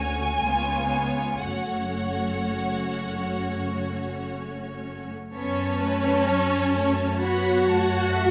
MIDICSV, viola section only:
0, 0, Header, 1, 2, 480
1, 0, Start_track
1, 0, Key_signature, 3, "minor"
1, 0, Tempo, 931677
1, 731, Time_signature, 4, 2, 24, 8
1, 731, Tempo, 983607
1, 2651, Tempo, 938967
1, 3611, Tempo, 879765
1, 4198, End_track
2, 0, Start_track
2, 0, Title_t, "Viola section"
2, 0, Program_c, 0, 48
2, 0, Note_on_c, 0, 57, 48
2, 0, Note_on_c, 0, 61, 49
2, 234, Note_off_c, 0, 57, 0
2, 234, Note_off_c, 0, 61, 0
2, 241, Note_on_c, 0, 59, 54
2, 241, Note_on_c, 0, 61, 45
2, 720, Note_off_c, 0, 61, 0
2, 728, Note_on_c, 0, 61, 46
2, 729, Note_on_c, 0, 57, 46
2, 730, Note_off_c, 0, 59, 0
2, 2525, Note_off_c, 0, 61, 0
2, 2526, Note_off_c, 0, 57, 0
2, 2650, Note_on_c, 0, 61, 93
2, 3589, Note_off_c, 0, 61, 0
2, 3609, Note_on_c, 0, 66, 94
2, 4198, Note_off_c, 0, 66, 0
2, 4198, End_track
0, 0, End_of_file